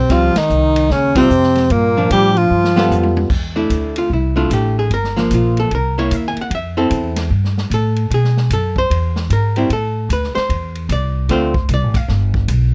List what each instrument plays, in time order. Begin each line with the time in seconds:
Already playing: trombone C3, tenor saxophone C4
0.09 upright bass C#2, trombone F3, hollow-body jazz guitar G3 C4 F4, tenor saxophone F4, kick, snare, ride
0.36 trombone D#3, tenor saxophone D#4, muted upright bass stroke, snare, ride
0.50 upright bass C2, hi-hat pedal
0.76 ride
0.90 upright bass D#2, trombone C#3, tenor saxophone C#4, kick, snare
1.15 trombone C3, hollow-body jazz guitar G3 C4 F4, tenor saxophone C4, kick, ride
1.30 upright bass F2, kick, hi-hat pedal
1.43 snare
1.55 snare, ride
1.70 upright bass G2, trombone A#2, tenor saxophone A#3, kick, ride
1.97 hollow-body jazz guitar F3 D4
2.10 upright bass A2, trombone G3, tenor saxophone G4, kick, hi-hat pedal, ride
2.36 trombone F3, tenor saxophone F4, ride
2.50 upright bass G2
2.64 snare
2.76 hollow-body jazz guitar G3 B3 F4 A4, snare
2.89 upright bass F2, hi-hat pedal, high tom
3.03 high tom
3.17 high tom
3.30 upright bass E2, kick, crash
3.56 hollow-body jazz guitar A3 D4 E4
3.70 upright bass D2, kick, hi-hat pedal, ride
3.96 hollow-body jazz guitar F4, ride
4.10 upright bass C2, hollow-body jazz guitar E4, kick
4.36 hollow-body jazz guitar A3 D4 E4 F4
4.50 upright bass A1, hollow-body jazz guitar G4, kick, hi-hat pedal, ride
4.79 hollow-body jazz guitar G#4
4.90 upright bass G1, hollow-body jazz guitar A#4, kick, ride
5.04 snare
5.16 hollow-body jazz guitar F3 A#3 D4, snare
5.30 upright bass A#1, kick, hi-hat pedal, ride
5.34 hollow-body jazz guitar F4
5.57 hollow-body jazz guitar A4, ride
5.71 upright bass C2, kick, ride
5.75 hollow-body jazz guitar A#4
5.98 hollow-body jazz guitar A#3 E4 C#5
6.10 upright bass D#2, kick, hi-hat pedal, ride
6.15 hollow-body jazz guitar E5
6.28 hollow-body jazz guitar G#5
6.37 muted upright bass stroke, ride
6.41 hollow-body jazz guitar F#5
6.50 upright bass F2, kick, ride
6.55 hollow-body jazz guitar E5
6.77 hollow-body jazz guitar C4 E4 A4
6.90 upright bass E2, kick, hi-hat pedal, ride
7.16 snare, ride
7.30 upright bass G2, kick
7.44 snare
7.58 snare
7.70 upright bass A2, hollow-body jazz guitar A4, kick, hi-hat pedal, ride
7.96 ride
8.10 upright bass B2, hollow-body jazz guitar G#4, kick, ride
8.24 snare
8.37 snare
8.50 upright bass F#2, hollow-body jazz guitar A4, kick, hi-hat pedal, ride
8.76 hollow-body jazz guitar C5, kick
8.90 upright bass E2, kick, ride
9.16 snare
9.30 upright bass G#2, hollow-body jazz guitar A#4, kick, hi-hat pedal, ride
9.56 hollow-body jazz guitar G3 C4 E4, ride
9.70 upright bass A2, hollow-body jazz guitar A4, kick, ride
10.09 upright bass D2, hollow-body jazz guitar B4, kick, hi-hat pedal, ride
10.23 snare
10.35 hollow-body jazz guitar C5, muted upright bass stroke, snare
10.49 upright bass E2, kick, ride
10.75 ride
10.89 upright bass C2, hollow-body jazz guitar D5, kick, hi-hat pedal, ride
11.29 upright bass D2, hollow-body jazz guitar D3 A3 C4 F4 C5, kick, ride
11.54 kick
11.69 upright bass C2, kick, hi-hat pedal, ride
11.74 hollow-body jazz guitar D5
11.83 upright bass A1
11.94 upright bass F1, hollow-body jazz guitar F5, kick, ride
12.08 upright bass G1, kick, snare
12.34 kick
12.48 upright bass B1, kick, hi-hat pedal, ride